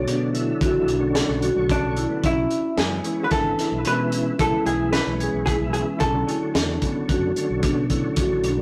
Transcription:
0.00 0.29 D3 medium
0.00 0.29 F#3 medium
0.00 0.30 A3 medium
0.00 0.30 D4 medium
0.00 1.39 C#5 medium
0.07 0.51 B2 medium
0.07 0.30 D4 medium
0.07 closed hi-hat medium
0.32 0.95 D3 medium
0.32 0.95 F#3 medium
0.32 0.95 A3 medium
0.32 0.96 E4 medium
0.32 0.57 E4 medium
0.32 closed hi-hat medium
0.61 0.88 A1 medium
0.61 0.84 F#4 medium
0.61 kick loud
0.61 closed hi-hat medium
0.88 1.21 B1 medium
0.88 1.11 D4 medium
0.88 closed hi-hat medium
0.99 1.50 D3 medium
0.99 1.50 F#3 medium
0.99 1.50 A3 medium
0.99 1.51 C#4 loud
1.15 1.38 A4 medium
1.15 snare loud
1.15 closed hi-hat medium
1.29 1.51 B1 medium
1.42 1.65 F#4 medium
1.42 closed hi-hat medium
1.54 1.78 B1 medium
1.54 2.04 D3 medium
1.54 2.05 F#3 medium
1.54 2.05 A3 medium
1.54 2.05 C#5 medium
1.69 1.92 C#4 medium
1.69 2.25 D4 medium
1.69 kick medium
1.69 closed hi-hat medium
1.84 2.05 B1 medium
1.97 2.19 E4 medium
1.97 closed hi-hat medium
2.08 2.22 D3 medium
2.08 2.22 F#3 medium
2.08 2.23 A3 medium
2.08 2.23 B3 medium
2.24 2.45 B1 medium
2.24 2.67 C#4 medium
2.24 2.80 E4 medium
2.24 kick loud
2.24 closed hi-hat medium
2.51 closed hi-hat soft
2.76 2.99 F#2 medium
2.76 3.26 E3 medium
2.76 3.27 G#3 medium
2.76 3.27 B3 medium
2.76 3.27 C#4 medium
2.76 3.00 G#4 medium
2.76 3.24 G#4 medium
2.76 snare medium
2.76 closed hi-hat medium
3.04 3.27 E4 medium
3.04 closed hi-hat medium
3.24 3.31 B4 medium
3.29 3.53 G#1 medium
3.29 3.80 E3 medium
3.29 3.80 B3 medium
3.29 3.54 D4 medium
3.29 3.80 E4 medium
3.29 3.87 A4 medium
3.29 kick medium
3.29 snare soft
3.29 closed hi-hat medium
3.59 3.81 E4 medium
3.59 snare soft
3.59 closed hi-hat medium
3.72 3.83 B1 medium
3.84 4.30 B2 medium
3.84 4.34 E3 medium
3.84 4.34 G#3 medium
3.84 4.34 B3 medium
3.84 4.07 C#4 medium
3.84 4.34 E4 medium
3.84 4.37 B4 loud
3.84 closed hi-hat medium
4.12 4.34 C#4 medium
4.12 closed hi-hat medium
4.38 4.50 B1 medium
4.38 5.00 E3 medium
4.38 5.01 G#3 medium
4.38 5.01 B3 medium
4.38 4.61 E4 medium
4.38 5.01 E4 medium
4.38 4.66 A4 medium
4.38 kick loud
4.38 closed hi-hat medium
4.66 4.99 B1 medium
4.66 5.10 E4 medium
4.66 4.92 G#4 medium
4.66 closed hi-hat medium
4.93 5.45 B4 medium
4.93 snare medium
4.93 closed hi-hat medium
5.06 5.29 B1 medium
5.06 5.56 E3 medium
5.06 5.56 G#3 medium
5.06 5.56 B3 medium
5.06 5.56 C#4 medium
5.20 5.42 G#4 medium
5.20 closed hi-hat soft
5.34 5.56 B1 medium
5.46 5.69 E4 medium
5.46 5.53 G#4 medium
5.46 kick medium
5.46 closed hi-hat medium
5.59 5.82 B1 medium
5.59 6.00 E3 medium
5.59 6.01 G#3 medium
5.59 6.01 B3 medium
5.59 6.01 E4 medium
5.73 5.96 C#4 medium
5.73 5.81 G#4 medium
5.73 closed hi-hat medium
6.00 6.23 B1 medium
6.00 6.23 C#4 medium
6.00 8.62 A4 medium
6.00 kick medium
6.00 closed hi-hat medium
6.14 6.76 D3 medium
6.14 6.76 F#3 medium
6.14 6.76 A3 medium
6.14 6.77 C#4 medium
6.28 6.50 E4 medium
6.28 closed hi-hat medium
6.55 6.77 E2 medium
6.55 6.77 D4 medium
6.55 snare loud
6.55 closed hi-hat medium
6.81 7.31 D3 medium
6.81 7.32 F#3 medium
6.81 7.32 A3 medium
6.81 7.05 B3 medium
6.81 7.32 C#4 medium
6.81 kick medium
6.81 closed hi-hat medium
7.09 7.31 F#2 medium
7.09 7.53 F#4 medium
7.09 kick medium
7.09 closed hi-hat medium
7.36 7.85 D3 medium
7.36 7.86 F#3 medium
7.36 7.86 A3 medium
7.36 7.86 C#4 medium
7.36 closed hi-hat medium
7.50 7.61 B1 medium
7.63 8.07 B2 medium
7.63 7.86 D4 medium
7.63 kick loud
7.63 closed hi-hat medium
7.89 8.51 D3 medium
7.89 8.52 F#3 medium
7.89 8.52 A3 medium
7.89 8.52 C#4 medium
7.89 8.12 E4 medium
7.89 kick medium
7.89 closed hi-hat medium
8.16 8.45 A1 medium
8.16 8.39 F#4 medium
8.16 kick loud
8.16 closed hi-hat medium
8.44 8.62 B1 medium
8.44 8.62 D4 medium
8.44 closed hi-hat medium
8.56 8.62 D3 medium
8.56 8.62 F#3 medium
8.56 8.62 A3 medium
8.56 8.62 C#4 medium

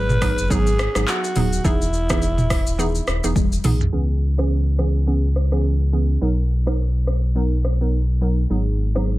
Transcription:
0.00 0.34 G#1 loud
0.00 0.19 F#3 medium
0.00 0.19 B3 medium
0.00 0.19 D#4 medium
0.00 0.19 G#4 medium
0.00 0.53 B4 loud
0.10 mid tom loud
0.10 shaker soft
0.21 0.48 F#3 medium
0.21 0.48 B3 medium
0.21 0.48 D#4 medium
0.21 0.49 G#4 medium
0.21 kick loud
0.21 cross-stick loud
0.21 open hi-hat medium
0.21 shaker medium
0.38 0.48 F#1 medium
0.38 shaker medium
0.50 0.88 G#1 medium
0.50 0.71 F#3 loud
0.50 0.71 B3 medium
0.50 0.71 D#4 medium
0.50 0.71 G#4 loud
0.50 0.96 G#4 loud
0.50 kick medium
0.50 shaker medium
0.67 shaker medium
0.79 cross-stick loud
0.79 shaker soft
0.95 1.05 G#1 medium
0.95 1.33 F#3 medium
0.95 1.33 B3 medium
0.95 1.33 D#4 medium
0.95 1.33 G#4 medium
0.95 1.07 G#4 medium
0.95 cross-stick loud
0.95 shaker loud
1.08 1.61 F#4 loud
1.08 clap loud
1.08 shaker medium
1.24 shaker medium
1.36 1.60 D#1 loud
1.36 1.63 F#3 medium
1.36 1.63 B3 medium
1.36 1.63 D#4 medium
1.36 1.63 G#4 medium
1.36 mid tom loud
1.36 open hi-hat medium
1.36 shaker soft
1.53 shaker medium
1.64 2.63 E1 loud
1.64 1.85 E3 loud
1.64 1.85 B3 medium
1.64 1.85 D#4 medium
1.64 3.33 E4 loud
1.64 1.85 G#4 loud
1.64 kick loud
1.64 shaker medium
1.81 shaker medium
1.93 shaker soft
2.10 2.27 E3 medium
2.10 2.27 B3 medium
2.10 2.27 D#4 medium
2.10 2.27 G#4 medium
2.10 kick loud
2.10 cross-stick loud
2.10 shaker medium
2.22 shaker medium
2.38 mid tom loud
2.38 shaker soft
2.50 kick loud
2.50 cross-stick loud
2.50 open hi-hat medium
2.50 shaker medium
2.67 3.01 D#1 medium
2.67 shaker medium
2.78 2.99 E3 loud
2.78 2.99 B3 medium
2.78 2.99 D#4 medium
2.78 2.99 G#4 loud
2.78 shaker medium
2.95 shaker medium
3.07 3.21 D#1 medium
3.07 cross-stick loud
3.07 shaker soft
3.24 3.34 E1 medium
3.24 3.41 E3 medium
3.24 3.41 B3 medium
3.24 3.41 D#4 medium
3.24 3.41 G#4 medium
3.24 shaker loud
3.36 3.60 E1 medium
3.36 kick loud
3.36 high tom medium
3.36 shaker medium
3.52 shaker medium
3.64 3.88 B1 loud
3.64 3.85 E3 medium
3.64 3.85 B3 medium
3.64 3.85 D#4 medium
3.64 3.85 G#4 medium
3.64 mid tom loud
3.64 open hi-hat medium
3.64 shaker soft
3.81 floor tom loud
3.81 shaker medium
3.92 6.18 C#2 medium
3.92 4.34 E3 medium
3.92 4.34 B3 medium
3.92 4.34 C#4 medium
3.92 4.34 G#4 loud
4.38 4.76 E3 medium
4.38 4.76 B3 medium
4.38 4.76 C#4 medium
4.38 4.76 G#4 medium
4.38 cross-stick loud
4.78 5.05 E3 medium
4.78 5.05 B3 medium
4.78 5.05 C#4 medium
4.78 5.06 G#4 medium
4.78 cross-stick medium
5.07 5.28 E3 medium
5.07 5.28 B3 medium
5.07 5.28 C#4 medium
5.07 5.28 G#4 loud
5.36 cross-stick medium
5.52 5.90 E3 medium
5.52 5.90 B3 medium
5.52 5.90 C#4 medium
5.52 5.90 G#4 medium
5.52 cross-stick medium
5.93 6.20 E3 medium
5.93 6.20 B3 medium
5.93 6.20 C#4 medium
5.93 6.20 G#4 medium
6.21 8.46 B1 medium
6.21 6.42 F#3 medium
6.21 6.42 B3 medium
6.21 6.42 D#4 medium
6.21 6.42 A#4 loud
6.66 6.84 F#3 medium
6.66 6.84 B3 medium
6.66 6.84 D#4 medium
6.66 6.84 A#4 medium
6.66 cross-stick loud
7.07 cross-stick loud
7.35 7.56 F#3 medium
7.35 7.56 B3 medium
7.35 7.56 D#4 medium
7.35 7.56 A#4 loud
7.65 cross-stick medium
7.81 7.98 F#3 medium
7.81 7.98 B3 medium
7.81 7.99 D#4 medium
7.81 7.99 A#4 medium
8.21 8.42 F#3 medium
8.21 8.42 B3 medium
8.21 8.42 D#4 medium
8.21 8.42 A#4 medium
8.50 9.19 G#1 medium
8.50 8.91 F#3 medium
8.50 8.91 B3 medium
8.50 8.92 D#4 medium
8.50 8.92 G#4 loud
8.95 9.19 F#3 medium
8.95 9.19 B3 medium
8.95 9.19 D#4 medium
8.95 9.19 G#4 medium
8.95 cross-stick loud

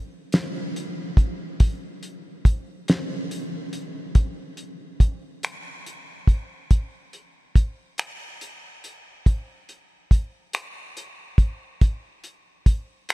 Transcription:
0.32 snare medium
0.32 closed hi-hat medium
0.76 closed hi-hat medium
1.17 kick medium
1.17 closed hi-hat soft
1.60 kick loud
1.60 closed hi-hat medium
2.03 closed hi-hat soft
2.45 kick medium
2.45 closed hi-hat medium
2.88 snare loud
2.88 closed hi-hat medium
3.31 closed hi-hat medium
3.73 closed hi-hat medium
4.15 kick loud
4.15 closed hi-hat medium
4.57 closed hi-hat soft
5.00 kick medium
5.00 closed hi-hat medium
5.43 finger snap medium
5.43 closed hi-hat medium
5.86 closed hi-hat medium
6.27 kick medium
6.27 closed hi-hat soft
6.71 kick medium
6.71 closed hi-hat medium
7.13 closed hi-hat soft
7.56 kick medium
7.56 closed hi-hat medium
7.98 finger snap medium
7.98 closed hi-hat medium
8.41 closed hi-hat soft
8.84 closed hi-hat soft
9.26 kick loud
9.26 closed hi-hat medium
9.69 closed hi-hat soft
10.11 kick medium
10.11 closed hi-hat medium
10.53 finger snap medium
10.53 closed hi-hat medium
10.97 closed hi-hat medium
11.38 kick medium
11.38 closed hi-hat soft
11.81 kick medium
11.81 closed hi-hat medium
12.24 closed hi-hat soft
12.66 kick medium
12.66 closed hi-hat medium
13.09 finger snap loud
13.09 closed hi-hat medium

